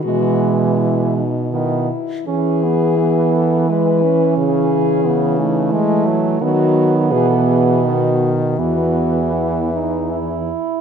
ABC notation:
X:1
M:3/4
L:1/16
Q:1/4=83
K:E
V:1 name="French horn"
F3 z E2 D2 E4 | G6 A2 B4 | G6 D2 E4 | F4 G A G2 F3 z |
F4 E6 z2 |]
V:2 name="French horn"
G,6 z2 B,2 z2 | C2 B,2 B,4 G,2 C2- | C4 B,2 A,6 | B,12 |
B,6 D2 E4 |]
V:3 name="French horn" clef=bass
E,6 z2 D,2 z2 | E,12 | C,4 C,4 G,2 F,2 | F,4 E,4 D,4 |
E,8- E,2 z2 |]
V:4 name="French horn" clef=bass
B,,8- B,,2 z2 | E,12- | E,12 | D,4 B,,8 |
E,,8- E,,2 z2 |]